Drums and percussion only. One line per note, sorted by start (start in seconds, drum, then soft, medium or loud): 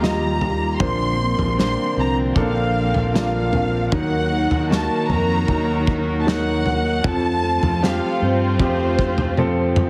0.04 snare medium
0.41 floor tom medium
0.80 kick medium
0.80 floor tom loud
1.39 floor tom medium
1.60 snare medium
2.36 kick medium
2.36 floor tom soft
2.94 floor tom soft
3.16 snare loud
3.53 floor tom medium
3.92 kick medium
3.92 floor tom medium
4.51 floor tom medium
4.72 snare medium
5.10 floor tom soft
5.48 kick medium
5.48 floor tom soft
5.87 kick medium
6.28 snare loud
6.66 floor tom medium
7.04 kick loud
7.04 floor tom loud
7.63 floor tom medium
7.84 snare medium
8.60 kick medium
8.60 floor tom medium
8.99 kick medium
9.18 floor tom medium
9.37 high tom soft
9.76 mid tom medium